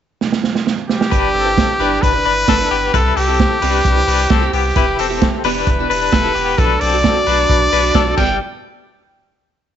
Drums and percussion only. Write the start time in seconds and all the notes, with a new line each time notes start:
0.21 snare
0.32 snare
0.44 snare
0.55 snare
0.67 snare
0.89 snare
1.01 snare
1.12 kick, closed hi-hat
1.58 kick, snare, closed hi-hat
2.03 kick, closed hi-hat
2.48 kick, snare, closed hi-hat
2.94 kick, closed hi-hat
3.17 open hi-hat
3.40 kick, snare, closed hi-hat
3.62 open hi-hat
3.85 kick, closed hi-hat
4.08 open hi-hat
4.30 kick, snare, closed hi-hat
4.53 open hi-hat
4.76 kick, closed hi-hat
4.99 open hi-hat
5.22 kick, snare, closed hi-hat
5.44 open hi-hat
5.67 kick, closed hi-hat
5.91 open hi-hat
6.12 kick, snare, closed hi-hat
6.36 open hi-hat
6.58 kick, closed hi-hat
6.81 open hi-hat
7.04 kick, snare, closed hi-hat
7.26 open hi-hat
7.49 kick, closed hi-hat
7.73 open hi-hat
7.94 kick, snare, closed hi-hat
8.17 kick, crash